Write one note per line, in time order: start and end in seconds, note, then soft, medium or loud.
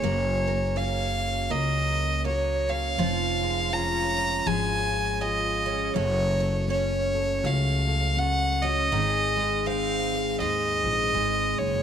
0.00 1.47 F#1 medium
0.00 2.99 F#3 medium
0.00 0.46 A#3 medium
0.00 2.99 G#4 medium
0.00 0.79 C#5 medium
0.04 0.47 A#4 medium
0.48 1.49 A#3 medium
0.48 1.50 A#4 soft
0.76 2.68 C#4 soft
0.76 2.24 F#4 medium
0.76 1.53 F5 medium
1.21 1.96 C#5 medium
1.50 2.95 C#2 medium
1.50 2.96 C#3 medium
1.50 2.24 A#3 medium
1.50 2.70 A#4 medium
1.50 2.25 D#5 medium
1.97 2.99 C#5 medium
2.25 3.08 A#3 medium
2.25 2.96 F#4 medium
2.25 2.72 C#5 medium
2.69 3.72 C#4 soft
2.69 2.96 A#4 medium
2.69 3.74 F5 loud
2.98 4.43 F1 medium
2.98 5.95 F3 medium
2.98 4.45 F3 medium
2.98 5.96 F4 medium
2.98 3.42 C#5 medium
3.43 4.46 G#3 soft
3.43 4.17 C#5 soft
3.73 5.65 C#4 medium
3.73 5.20 F4 medium
3.73 4.48 A#5 loud
4.18 4.90 C#5 medium
4.46 5.91 G#1 medium
4.46 5.91 F3 medium
4.46 5.20 G#3 medium
4.46 5.64 G#4 medium
4.46 5.23 G#5 medium
4.91 5.92 C#5 medium
5.21 5.95 G#3 medium
5.21 5.92 F4 medium
5.21 5.95 D#5 medium
5.66 6.04 C#4 medium
5.66 5.92 G#4 medium
5.95 7.40 F#1 medium
5.95 8.92 F#3 medium
5.95 6.39 A3 medium
5.95 6.66 C#4 soft
5.95 7.43 F#4 medium
5.95 8.92 F#4 soft
5.95 6.38 A4 medium
5.95 6.66 C#5 loud
6.40 7.43 A3 medium
6.40 7.13 A4 medium
6.68 8.15 C#4 medium
6.68 8.61 C#4 medium
6.68 7.47 C#5 medium
7.14 7.87 A4 medium
7.43 8.88 C#2 loud
7.43 8.92 C#3 medium
7.43 8.17 A3 medium
7.43 8.63 F#4 medium
7.43 8.20 F5 medium
7.88 8.88 A4 medium
8.17 9.01 A3 medium
8.17 8.88 C#4 medium
8.17 8.63 F#5 loud
8.62 9.01 C#4 medium
8.62 8.89 F#4 medium
8.62 9.68 D#5 loud
8.92 10.37 G#1 medium
8.92 10.40 G#2 medium
8.92 11.83 D#3 medium
8.92 11.83 G#4 medium
8.92 9.37 G#4 medium
9.36 10.39 G#3 medium
9.36 10.12 G#4 medium
9.66 11.60 C4 medium
9.66 11.15 C4 medium
9.66 10.40 F5 medium
10.13 10.85 G#4 medium
10.40 10.83 D#2 medium
10.40 11.83 G#2 medium
10.40 11.13 G#3 medium
10.40 11.59 D#4 medium
10.40 11.60 D#5 medium
10.84 11.11 A#1 medium
10.84 11.83 G#4 medium
11.14 11.55 G#1 medium
11.14 11.83 G#3 medium
11.59 11.83 F#1 medium
11.59 11.83 D#4 soft
11.59 11.83 C#5 medium